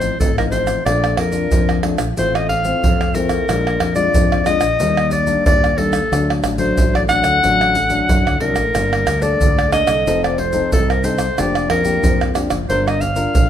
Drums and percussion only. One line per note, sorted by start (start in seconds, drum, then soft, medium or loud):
0.01 pandeiro medium
0.01 shaker medium
0.01 surdo soft
0.21 pandeiro medium
0.21 shaker medium
0.21 surdo loud
0.38 pandeiro soft
0.38 tamborim medium
0.38 shaker soft
0.52 pandeiro medium
0.52 shaker medium
0.67 pandeiro medium
0.67 tamborim medium
0.67 shaker medium
0.67 surdo soft
0.86 pandeiro medium
0.86 tamborim medium
0.86 shaker medium
0.86 surdo medium
1.04 pandeiro soft
1.04 tamborim medium
1.04 shaker soft
1.17 pandeiro medium
1.17 tamborim medium
1.17 surdo soft
1.32 pandeiro medium
1.32 shaker medium
1.32 surdo soft
1.52 pandeiro medium
1.52 shaker medium
1.52 surdo loud
1.69 pandeiro soft
1.69 tamborim medium
1.69 shaker soft
1.83 pandeiro medium
1.83 tamborim medium
1.98 pandeiro medium
1.98 tamborim medium
1.98 shaker medium
2.17 pandeiro medium
2.17 shaker medium
2.17 surdo medium
2.35 pandeiro soft
2.35 tamborim medium
2.35 shaker soft
2.49 pandeiro medium
2.49 surdo soft
2.65 pandeiro medium
2.65 shaker medium
2.65 surdo soft
2.84 pandeiro medium
2.84 shaker medium
2.84 surdo loud
3.01 pandeiro soft
3.01 tamborim medium
3.01 shaker soft
3.15 pandeiro medium
3.15 shaker medium
3.29 pandeiro soft
3.29 tamborim medium
3.29 shaker medium
3.29 surdo soft
3.49 pandeiro medium
3.49 tamborim medium
3.49 shaker medium
3.49 surdo medium
3.67 pandeiro soft
3.67 tamborim medium
3.67 shaker soft
3.80 pandeiro medium
3.80 tamborim medium
3.80 surdo soft
3.96 pandeiro medium
3.96 shaker medium
3.96 surdo soft
4.14 pandeiro medium
4.14 shaker medium
4.14 surdo loud
4.32 pandeiro soft
4.32 tamborim medium
4.32 shaker soft
4.46 pandeiro medium
4.46 tamborim medium
4.46 shaker medium
4.61 pandeiro medium
4.61 tamborim medium
4.61 shaker medium
4.80 pandeiro medium
4.80 shaker medium
4.80 surdo medium
4.97 pandeiro soft
4.97 tamborim medium
4.97 shaker soft
5.11 pandeiro medium
5.11 shaker medium
5.11 surdo soft
5.27 pandeiro medium
5.27 shaker medium
5.27 surdo soft
5.46 pandeiro medium
5.46 shaker medium
5.46 surdo loud
5.64 pandeiro soft
5.64 tamborim medium
5.64 shaker soft
5.78 pandeiro medium
5.93 pandeiro medium
5.93 tamborim medium
5.93 shaker medium
5.93 surdo soft
6.13 pandeiro medium
6.13 tamborim medium
6.13 shaker medium
6.13 surdo medium
6.30 pandeiro soft
6.30 tamborim medium
6.30 shaker soft
6.44 pandeiro medium
6.44 tamborim medium
6.44 shaker medium
6.44 surdo soft
6.58 pandeiro medium
6.58 shaker medium
6.58 surdo soft
6.77 pandeiro medium
6.77 shaker medium
6.77 surdo loud
6.95 pandeiro soft
6.95 tamborim medium
6.95 shaker soft
7.09 pandeiro medium
7.09 tamborim medium
7.09 shaker medium
7.24 pandeiro medium
7.24 tamborim medium
7.24 shaker medium
7.43 pandeiro medium
7.43 shaker medium
7.43 surdo medium
7.61 pandeiro soft
7.61 tamborim medium
7.61 shaker soft
7.75 pandeiro medium
7.75 shaker medium
7.75 surdo soft
7.90 pandeiro medium
7.90 shaker medium
7.90 surdo soft
8.09 pandeiro medium
8.09 shaker medium
8.09 surdo loud
8.27 pandeiro soft
8.27 tamborim medium
8.27 shaker soft
8.40 pandeiro medium
8.56 pandeiro medium
8.56 tamborim medium
8.56 shaker medium
8.56 surdo soft
8.75 pandeiro medium
8.75 tamborim medium
8.75 shaker medium
8.75 surdo medium
8.93 pandeiro soft
8.93 tamborim medium
8.93 shaker soft
9.07 pandeiro medium
9.07 tamborim medium
9.07 shaker medium
9.07 surdo soft
9.22 pandeiro medium
9.22 shaker medium
9.22 surdo soft
9.41 pandeiro medium
9.41 shaker medium
9.41 surdo loud
9.59 pandeiro soft
9.59 tamborim medium
9.59 shaker soft
9.72 pandeiro medium
9.72 tamborim medium
9.72 shaker medium
9.87 pandeiro medium
9.87 tamborim medium
9.87 shaker medium
10.07 pandeiro medium
10.07 shaker medium
10.07 surdo medium
10.24 pandeiro soft
10.24 tamborim medium
10.24 shaker soft
10.38 pandeiro medium
10.38 surdo soft
10.53 pandeiro medium
10.53 shaker medium
10.53 surdo soft
10.72 pandeiro medium
10.72 shaker medium
10.72 surdo loud
10.90 pandeiro soft
10.90 tamborim medium
10.90 shaker soft
11.04 pandeiro medium
11.04 shaker medium
11.18 pandeiro medium
11.18 tamborim medium
11.18 shaker medium
11.18 surdo soft
11.38 pandeiro medium
11.38 tamborim medium
11.38 shaker medium
11.38 surdo medium
11.55 pandeiro soft
11.55 tamborim medium
11.55 shaker soft
11.70 pandeiro medium
11.70 tamborim medium
11.70 surdo soft
11.85 pandeiro medium
11.85 shaker medium
11.85 surdo soft
12.04 pandeiro medium
12.04 shaker medium
12.04 surdo loud
12.21 pandeiro soft
12.21 tamborim medium
12.21 shaker soft
12.35 pandeiro medium
12.35 tamborim medium
12.35 shaker medium
12.50 pandeiro medium
12.50 tamborim medium
12.50 shaker medium
12.70 pandeiro medium
12.70 shaker medium
12.70 surdo medium
12.88 pandeiro soft
12.88 tamborim medium
12.88 shaker soft
13.01 pandeiro medium
13.01 shaker medium
13.01 surdo soft
13.16 pandeiro medium
13.16 shaker medium
13.16 surdo soft
13.35 pandeiro medium
13.35 shaker medium
13.35 surdo loud